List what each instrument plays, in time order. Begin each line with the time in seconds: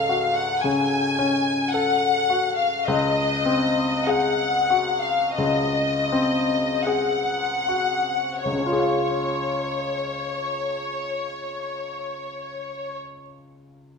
Already playing: grand piano C#2 C#4 A4, violin section F5
0.09 grand piano F#4
0.35 violin section F#5
0.61 grand piano C#3, violin section G#5
1.19 grand piano C#4
1.71 grand piano A4, violin section F#5
2.30 grand piano F#4
2.56 violin section F5
2.85 grand piano C#2, violin section D#5
3.45 grand piano C4
4.04 grand piano G#4, violin section F#5
4.70 grand piano F#4
5.01 violin section F5
5.35 grand piano C#2, violin section D#5
6.12 grand piano C4
6.84 grand piano G#4, violin section F#5
7.68 grand piano F#4
8.43 grand piano C#2, violin section C#5
8.52 grand piano C#3
8.60 grand piano C#4
8.66 grand piano F4
8.73 grand piano G#4
8.80 grand piano F5